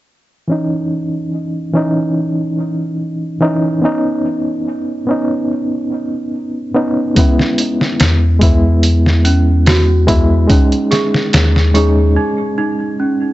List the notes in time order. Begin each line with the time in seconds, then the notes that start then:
0.48 E3 C#4 D#4
1.73 E3 C#4 D#4
3.41 E3 C#4 D#4
3.82 B3 C#4 D#4
5.07 B3 C#4 D#4
6.75 B3 C#4 D#4
7.15 G#3 B3 C#4 E4, kick, open hi-hat
7.39 snare
7.58 open hi-hat
7.81 snare
8.00 E2, snare, open hi-hat
8.39 G#3 B3 E4, kick, open hi-hat
8.83 open hi-hat
9.06 snare
9.25 C#4, open hi-hat
9.66 F#4, snare, open hi-hat
10.07 G#3 B3 E4, kick, open hi-hat
10.48 G#3 C#4 D#4, kick, open hi-hat
10.72 closed hi-hat
10.91 G#4, snare, open hi-hat
11.14 snare
11.33 D#2, snare, open hi-hat
11.56 snare
11.74 G#3 C#4 D#4 G#4, open hi-hat
12.16 D#4
12.58 D#4
13.00 C#4